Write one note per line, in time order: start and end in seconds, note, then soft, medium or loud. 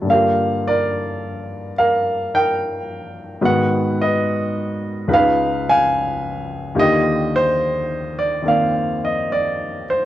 0.02 3.39 G2 soft
0.02 3.41 D3 soft
0.07 3.42 A#3 soft
0.07 3.44 F4 soft
0.07 0.67 A#4 medium
0.07 0.67 F5 medium
0.13 3.45 G4 soft
0.67 1.77 A#4 soft
0.67 1.72 D5 medium
1.78 2.34 A#4 medium
1.78 2.35 F5 medium
2.35 3.40 A#4 medium
2.35 3.40 G5 medium
3.42 5.08 G#2 medium
3.42 5.09 D#3 soft
3.42 5.09 B3 soft
3.42 5.09 F#4 soft
3.42 4.01 B4 medium
3.42 4.02 F#5 medium
4.02 5.06 B4 soft
4.02 5.13 D#5 medium
5.08 6.75 C#2 soft
5.08 6.76 C#3 soft
5.08 6.76 D#4 soft
5.08 6.74 F4 soft
5.08 5.13 B4 medium
5.13 6.74 B4 medium
5.13 5.69 F5 medium
5.69 6.74 F5 medium
5.69 6.81 G#5 loud
6.75 10.05 D#2 soft
6.75 10.05 D3 soft
6.75 8.41 D#3 soft
6.75 10.05 F4 soft
6.75 6.78 G4 medium
6.79 8.41 G4 medium
6.79 7.30 D#5 medium
7.36 8.20 C5 medium
8.19 8.45 D5 medium
8.42 10.05 D#3 soft
8.42 10.05 A#3 soft
8.42 10.05 C4 soft
8.48 9.31 D5 medium
8.48 9.04 F5 medium
9.05 9.30 D#5 medium
9.32 9.83 D5 medium
9.90 10.05 C5 medium